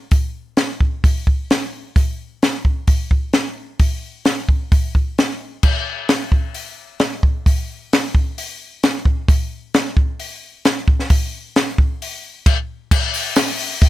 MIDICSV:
0, 0, Header, 1, 2, 480
1, 0, Start_track
1, 0, Tempo, 459418
1, 117, Time_signature, 4, 2, 24, 8
1, 7797, Tempo, 453515
1, 14602, End_track
2, 0, Start_track
2, 0, Title_t, "Drums"
2, 116, Note_on_c, 9, 46, 45
2, 122, Note_on_c, 9, 36, 99
2, 221, Note_off_c, 9, 46, 0
2, 226, Note_off_c, 9, 36, 0
2, 594, Note_on_c, 9, 46, 43
2, 598, Note_on_c, 9, 38, 88
2, 698, Note_off_c, 9, 46, 0
2, 702, Note_off_c, 9, 38, 0
2, 841, Note_on_c, 9, 36, 72
2, 946, Note_off_c, 9, 36, 0
2, 1085, Note_on_c, 9, 36, 105
2, 1090, Note_on_c, 9, 46, 46
2, 1190, Note_off_c, 9, 36, 0
2, 1195, Note_off_c, 9, 46, 0
2, 1327, Note_on_c, 9, 36, 72
2, 1432, Note_off_c, 9, 36, 0
2, 1572, Note_on_c, 9, 46, 47
2, 1577, Note_on_c, 9, 38, 101
2, 1677, Note_off_c, 9, 46, 0
2, 1681, Note_off_c, 9, 38, 0
2, 2047, Note_on_c, 9, 36, 98
2, 2049, Note_on_c, 9, 46, 41
2, 2152, Note_off_c, 9, 36, 0
2, 2153, Note_off_c, 9, 46, 0
2, 2534, Note_on_c, 9, 46, 42
2, 2538, Note_on_c, 9, 38, 92
2, 2638, Note_off_c, 9, 46, 0
2, 2643, Note_off_c, 9, 38, 0
2, 2767, Note_on_c, 9, 36, 69
2, 2871, Note_off_c, 9, 36, 0
2, 3004, Note_on_c, 9, 46, 50
2, 3007, Note_on_c, 9, 36, 99
2, 3108, Note_off_c, 9, 46, 0
2, 3111, Note_off_c, 9, 36, 0
2, 3248, Note_on_c, 9, 36, 71
2, 3353, Note_off_c, 9, 36, 0
2, 3481, Note_on_c, 9, 46, 46
2, 3485, Note_on_c, 9, 38, 97
2, 3585, Note_off_c, 9, 46, 0
2, 3590, Note_off_c, 9, 38, 0
2, 3965, Note_on_c, 9, 46, 49
2, 3967, Note_on_c, 9, 36, 92
2, 4069, Note_off_c, 9, 46, 0
2, 4071, Note_off_c, 9, 36, 0
2, 4442, Note_on_c, 9, 46, 48
2, 4446, Note_on_c, 9, 38, 89
2, 4547, Note_off_c, 9, 46, 0
2, 4551, Note_off_c, 9, 38, 0
2, 4687, Note_on_c, 9, 36, 74
2, 4791, Note_off_c, 9, 36, 0
2, 4930, Note_on_c, 9, 36, 109
2, 4931, Note_on_c, 9, 46, 46
2, 5035, Note_off_c, 9, 36, 0
2, 5035, Note_off_c, 9, 46, 0
2, 5171, Note_on_c, 9, 36, 68
2, 5275, Note_off_c, 9, 36, 0
2, 5416, Note_on_c, 9, 46, 49
2, 5420, Note_on_c, 9, 38, 101
2, 5520, Note_off_c, 9, 46, 0
2, 5524, Note_off_c, 9, 38, 0
2, 5882, Note_on_c, 9, 49, 89
2, 5885, Note_on_c, 9, 36, 101
2, 5986, Note_off_c, 9, 49, 0
2, 5990, Note_off_c, 9, 36, 0
2, 6360, Note_on_c, 9, 46, 49
2, 6364, Note_on_c, 9, 38, 95
2, 6465, Note_off_c, 9, 46, 0
2, 6469, Note_off_c, 9, 38, 0
2, 6601, Note_on_c, 9, 36, 77
2, 6705, Note_off_c, 9, 36, 0
2, 6837, Note_on_c, 9, 46, 52
2, 6942, Note_off_c, 9, 46, 0
2, 7310, Note_on_c, 9, 46, 48
2, 7314, Note_on_c, 9, 38, 98
2, 7415, Note_off_c, 9, 46, 0
2, 7419, Note_off_c, 9, 38, 0
2, 7555, Note_on_c, 9, 36, 80
2, 7660, Note_off_c, 9, 36, 0
2, 7796, Note_on_c, 9, 36, 99
2, 7804, Note_on_c, 9, 46, 55
2, 7902, Note_off_c, 9, 36, 0
2, 7910, Note_off_c, 9, 46, 0
2, 8291, Note_on_c, 9, 46, 52
2, 8295, Note_on_c, 9, 38, 106
2, 8397, Note_off_c, 9, 46, 0
2, 8401, Note_off_c, 9, 38, 0
2, 8520, Note_on_c, 9, 36, 80
2, 8626, Note_off_c, 9, 36, 0
2, 8768, Note_on_c, 9, 46, 58
2, 8874, Note_off_c, 9, 46, 0
2, 9248, Note_on_c, 9, 46, 49
2, 9252, Note_on_c, 9, 38, 106
2, 9353, Note_off_c, 9, 46, 0
2, 9358, Note_off_c, 9, 38, 0
2, 9481, Note_on_c, 9, 36, 84
2, 9587, Note_off_c, 9, 36, 0
2, 9725, Note_on_c, 9, 36, 109
2, 9733, Note_on_c, 9, 46, 48
2, 9831, Note_off_c, 9, 36, 0
2, 9839, Note_off_c, 9, 46, 0
2, 10210, Note_on_c, 9, 46, 45
2, 10214, Note_on_c, 9, 38, 99
2, 10316, Note_off_c, 9, 46, 0
2, 10320, Note_off_c, 9, 38, 0
2, 10447, Note_on_c, 9, 36, 81
2, 10553, Note_off_c, 9, 36, 0
2, 10689, Note_on_c, 9, 46, 51
2, 10795, Note_off_c, 9, 46, 0
2, 11171, Note_on_c, 9, 46, 50
2, 11175, Note_on_c, 9, 38, 94
2, 11277, Note_off_c, 9, 46, 0
2, 11281, Note_off_c, 9, 38, 0
2, 11410, Note_on_c, 9, 36, 87
2, 11516, Note_off_c, 9, 36, 0
2, 11536, Note_on_c, 9, 38, 29
2, 11642, Note_off_c, 9, 38, 0
2, 11646, Note_on_c, 9, 46, 56
2, 11649, Note_on_c, 9, 36, 103
2, 11752, Note_off_c, 9, 46, 0
2, 11755, Note_off_c, 9, 36, 0
2, 12133, Note_on_c, 9, 46, 47
2, 12137, Note_on_c, 9, 38, 89
2, 12239, Note_off_c, 9, 46, 0
2, 12243, Note_off_c, 9, 38, 0
2, 12370, Note_on_c, 9, 36, 80
2, 12476, Note_off_c, 9, 36, 0
2, 12620, Note_on_c, 9, 46, 54
2, 12726, Note_off_c, 9, 46, 0
2, 13087, Note_on_c, 9, 36, 99
2, 13087, Note_on_c, 9, 49, 92
2, 13193, Note_off_c, 9, 36, 0
2, 13193, Note_off_c, 9, 49, 0
2, 13566, Note_on_c, 9, 36, 117
2, 13568, Note_on_c, 9, 49, 118
2, 13672, Note_off_c, 9, 36, 0
2, 13674, Note_off_c, 9, 49, 0
2, 13804, Note_on_c, 9, 54, 81
2, 13816, Note_on_c, 9, 46, 62
2, 13910, Note_off_c, 9, 54, 0
2, 13922, Note_off_c, 9, 46, 0
2, 13928, Note_on_c, 9, 54, 33
2, 14034, Note_off_c, 9, 54, 0
2, 14037, Note_on_c, 9, 54, 101
2, 14040, Note_on_c, 9, 46, 73
2, 14044, Note_on_c, 9, 38, 104
2, 14143, Note_off_c, 9, 54, 0
2, 14146, Note_off_c, 9, 46, 0
2, 14150, Note_off_c, 9, 38, 0
2, 14169, Note_on_c, 9, 54, 75
2, 14275, Note_off_c, 9, 54, 0
2, 14282, Note_on_c, 9, 46, 59
2, 14388, Note_off_c, 9, 46, 0
2, 14519, Note_on_c, 9, 46, 71
2, 14524, Note_on_c, 9, 36, 113
2, 14602, Note_off_c, 9, 36, 0
2, 14602, Note_off_c, 9, 46, 0
2, 14602, End_track
0, 0, End_of_file